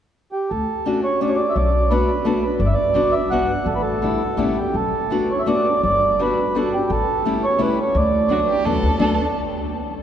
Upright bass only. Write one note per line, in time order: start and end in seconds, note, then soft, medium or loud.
0.51 0.63 D2 medium
1.56 2.01 B1 medium
2.60 2.72 G1 medium
3.66 4.13 A1 medium
4.37 4.62 A1 medium
4.74 4.87 B1 medium
5.83 6.30 G1 medium
6.90 7.02 A1 medium
7.95 8.41 D2 medium
8.65 8.82 E2 medium
8.83 8.99 D2 medium
9.00 9.18 D2 medium